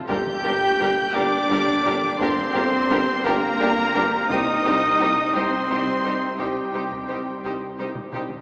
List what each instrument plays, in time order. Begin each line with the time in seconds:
0.09 tuba G1, timpani G2, double bass section G2, viola section G3 D4, trombone section A#3, cello section G4, violin section G4 A#4 G6, french horn section G4, trumpet G5, taiko
0.27 taiko mid
0.45 tuba G1, double bass section G2, viola section G3 D4, violin section G4 A#4
0.62 taiko
0.80 tuba G1, double bass section G2, viola section G3 D4, violin section G4 A#4
1.14 tuba G1, double bass section G2, viola section G3 D4, cello section D4, french horn section D4, violin section G4 A#4 D6, trumpet D5, taiko
1.50 tuba G1, double bass section G2, viola section G3 D4, violin section G4 A#4
1.68 taiko
1.85 tuba G1, double bass section G2, viola section G3 D4, violin section G4 A#4
2.03 taiko mid
2.19 tuba G1, double bass section G2, viola section G3 D4, cello section C4, french horn section C4, violin section G4 A#4 C6, trumpet C5, taiko
2.38 taiko mid
2.54 tuba G1, double bass section G2, viola section G3 D4, violin section G4 A#4
2.72 taiko
2.89 tuba G1, double bass section G2, viola section G3 D4, violin section G4 A#4
3.24 tuba G1, double bass section G2, viola section G3 D4, cello section A#3, french horn section A#3, violin section G4 A#4 A#5, trumpet A#4, taiko
3.59 tuba G1, double bass section G2, viola section G3 D4, violin section G4 A#4
3.77 taiko
3.94 tuba G1, double bass section G2, viola section G3 D4, violin section G4 A#4
4.13 taiko mid
4.29 double bass section C2, tuba C2, viola section G3 D#4, trombone section G3, cello section D#4, french horn section D#4, violin section G4 C5 D#6, trumpet D#5, taiko
4.65 double bass section C2, tuba C2, viola section G3 D#4, violin section G4 C5
4.83 taiko
4.99 double bass section C2, tuba C2, viola section G3 D#4, violin section G4 C5
5.34 double bass section C2, tuba C2, viola section G3 D#4, cello section C4, french horn section C4, violin section G4 C5 C6, trumpet C5, taiko
5.69 double bass section C2, tuba C2, viola section G3 D#4, violin section G4 C5
5.87 taiko
6.04 double bass section C2, tuba C2, viola section G3 D#4, violin section G4 C5
6.38 double bass section C2, tuba C2, viola section G3 D#4, cello section G3, french horn section G3, trumpet G4, violin section G4 C5 G5, taiko
6.73 double bass section C2, tuba C2, viola section G3 D#4, violin section G4 C5
6.92 taiko
7.09 double bass section C2, tuba C2, viola section G3 D#4, violin section G4 C5
7.43 double bass section C2, tuba C2, viola section G3 D#4, violin section G4 C5, taiko
7.78 double bass section C2, tuba C2, viola section G3 D#4, violin section G4 C5
7.95 taiko low-mid
8.13 double bass section C2, tuba C2, viola section G3 D#4, violin section G4 C5, taiko low-mid
8.30 taiko low